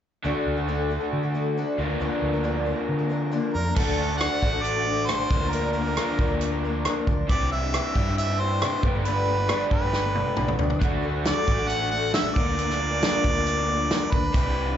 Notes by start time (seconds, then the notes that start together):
0.24 D2 D3 A3 D4 F#4 A4
0.47 D2
0.57 D4 F#4 A4
0.68 D3 A3 D4 F#4 A4
0.90 A3 D4 F#4 A4
1.00 D4 F#4 A4
1.13 D3
1.23 D4 F#4 A4
1.34 A3 D4 F#4 A4
1.57 D3 A3 D4 F#4 A4
1.77 D2 D3 F3 A#3 F4
1.81 D4 A#4
1.90 A#3 D4 A#4
2.00 D2 D3 F3 A#3 D4 A#4
2.22 D2
2.33 A#3 D4 A#4
2.44 D3 F3 A#3 D4 A#4
2.65 F3 A#3 D4 A#4
2.75 A#3 D4 A#4
2.89 D3
2.99 A#3 D4 A#4
3.09 F3 A#3 D4 A#4
3.32 D3 F3 A#3 D4 A#4
3.54 F2 F3 A#3 D4 A#4
3.65 A#3 D4 A#4
3.75 D2 D3 A3 D4 F#4 A4, kick, crash
3.98 A3 D4 F#4 A4
4.09 D4 F#4 A4
4.18 D3 A3 D4 F#4 A4 F#5, cross-stick, closed hi-hat
4.42 A1 D3 A3 D4 F#4 A4, kick
4.53 D4 F#4 A4
4.62 D5, closed hi-hat
4.76 D4 F#4 A4
4.85 A3 D4 F#4 A4
5.06 D3 A3 D4 F#4 A4 C5, cross-stick, closed hi-hat
5.18 D4 F#4 A4
5.29 D2 D3 F3 A#3 D4 A#4, kick
5.33 F4
5.41 A#3 D4 A#4
5.50 D3 F3 A#3 D4 A#4, closed hi-hat
5.54 A#4
5.73 F3 A#3 D4 A#4
5.77 A#4
5.87 A#3 D4 A#4
5.97 D3 F3 A#3 D4 F4 A#4, cross-stick, closed hi-hat
6.19 D2 F3 A#3 D4 A#4, kick
6.30 A#3 D4 A#4
6.41 closed hi-hat
6.52 A#3 D4 A#4
6.64 F3 A#3 D4 A#4
6.85 D3 F3 A#3 D4 A#4, cross-stick, closed hi-hat
6.96 A#3 D4 A#4
7.07 D2 F3 A#3 D4 A#4, kick
7.29 C2 C3 E3 G3 C4 D4 E4 G4 D5, kick, closed hi-hat
7.52 G3 D4 E4 G4 E5
7.62 D4 E4 G4
7.74 C3 G3 D4 E4 G4, cross-stick, closed hi-hat
7.95 G2 C3 E3 G3 C4 D4 E4 G4, kick
8.06 D4 E4 G4
8.18 E5, closed hi-hat
8.29 D4 E4 G4
8.40 G3 D4 E4 G4 C5
8.62 C3 G3 D4 E4 G4, cross-stick, closed hi-hat
8.72 D4 E4 G4
8.81 G1 G2 D3 G3 A3 B3 D4, kick
8.86 G4
8.95 A3 B3 D4 G4
9.05 G2 D3 A3 B3 D4 G4 B4, closed hi-hat
9.27 A3 B3 D4 G4
9.38 A3 B3 D4 G4
9.49 G2 D3 G3 A3 B3 D4 G4, cross-stick, closed hi-hat
9.70 G1 A3 B3 D4 G4 B4, kick
9.82 A3 B3 D4 G4
9.93 snare
10.03 A3 B3 D4 G4
10.14 A3 B3 D4 G4, high tom
10.36 B1 G2 D3 A3 B3 D4 G4, mid tom
10.47 A3 B3 D4 G4, mid tom
10.58 D2 A3 B3 D4 G4, floor tom
10.69 A3 B3 D4 G4, floor tom
10.80 D2 D3 A3 D4 F#4 A4, kick, closed hi-hat
11.02 A3 D4 F#4 A4
11.13 D4 F#4 A4
11.25 D3 A3 D4 F#4 A4 D5, snare, closed hi-hat
11.46 A1 A3 D4 F#4, kick
11.50 D3
11.58 D4 F#4 A4
11.68 F#5, closed hi-hat
11.80 D4 F#4 A4
11.91 A3 D4 F#4 A4 F#5
12.13 D3 A3 D4 F#4 A4 E5, snare, closed hi-hat
12.24 D4 F#4 A4
12.35 D2 D3 F3 A#3 D4 A#4 D5, kick
12.39 F4
12.57 D3 F3 A#3 D4 A#4, closed hi-hat
12.70 snare
12.79 F3 A#3 D4 A#4
12.91 A#3 D4 A#4
13.02 D3 F3 A#3 D4 F4 A#4, snare, closed hi-hat
13.24 D2 F3 A#3 D4 A#4, kick
13.34 A#3 D4 A#4
13.47 closed hi-hat
13.56 A#3 D4 A#4
13.68 F3 A#3 D4 A#4
13.90 D3 F3 A#3 D4 A#4, snare, closed hi-hat
13.99 A#3 D4 A#4
14.11 D2 F3 A#3 D4 A#4 B4, kick
14.34 C2 C3 E3 G3 C4 D4 E4 G4, kick, closed hi-hat
14.56 G3 D4 E4 G4
14.67 D4 E4 G4